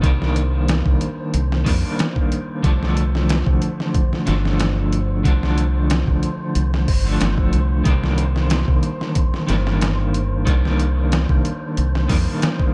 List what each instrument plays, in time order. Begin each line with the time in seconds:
Already playing: synth texture C5
0.02 fingered electric bass C2, clean electric guitar D#3 G3 A#3, kick, closed hi-hat
0.06 clean electric guitar D4
0.22 snare
0.36 closed hi-hat
0.68 snare, closed hi-hat
0.86 fingered electric bass C2, kick
1.01 closed hi-hat
1.34 fingered electric bass C2, closed hi-hat
1.52 snare
1.65 fingered electric bass F2, clean electric guitar D#3 G3 A#3 D4, kick, open hi-hat
1.99 snare, closed hi-hat
2.16 kick
2.32 closed hi-hat
2.63 fingered electric bass C2, clean electric guitar D3 F3 A3 D4, kick, closed hi-hat
2.83 snare
2.97 closed hi-hat
3.15 snare
3.29 snare, closed hi-hat
3.46 fingered electric bass C2, kick
3.62 closed hi-hat
3.80 snare
3.94 kick, closed hi-hat
4.13 snare
4.26 fingered electric bass G1, clean electric guitar D3 F3 A3, snare, closed hi-hat
4.30 clean electric guitar D4
4.45 snare
4.60 snare, closed hi-hat
4.93 closed hi-hat
5.24 fingered electric bass C2, clean electric guitar D3 F3 A3 D4, kick, closed hi-hat
5.43 snare
5.58 closed hi-hat
5.90 snare, closed hi-hat
6.07 fingered electric bass C2, kick
6.23 closed hi-hat
6.55 fingered electric bass C2, closed hi-hat
6.74 snare
6.88 fingered electric bass G1, kick, open hi-hat
7.04 clean electric guitar D3 F3 A3
7.08 clean electric guitar D4
7.21 fingered electric bass G1, snare, closed hi-hat
7.38 kick
7.53 fingered electric bass C2, closed hi-hat
7.84 fingered electric bass C2, clean electric guitar D#3 G3 A#3, kick, closed hi-hat
7.88 clean electric guitar D4
8.04 snare
8.18 closed hi-hat
8.36 snare
8.50 snare, closed hi-hat
8.68 fingered electric bass C2, kick
8.83 closed hi-hat
9.01 snare
9.15 kick, closed hi-hat
9.34 snare
9.47 fingered electric bass G1, clean electric guitar D#3 G3 A#3, snare, closed hi-hat
9.51 clean electric guitar D4
9.67 snare
9.81 snare, closed hi-hat
10.14 closed hi-hat
10.45 fingered electric bass C2, clean electric guitar D#3 G3 A#3 D4, kick, closed hi-hat
10.65 snare
10.80 closed hi-hat
11.12 snare, closed hi-hat
11.29 fingered electric bass C2, kick
11.45 closed hi-hat
11.77 fingered electric bass C2, closed hi-hat
11.95 snare
12.08 fingered electric bass F2, clean electric guitar D#3 G3 A#3 D4, kick, open hi-hat
12.42 snare, closed hi-hat
12.60 kick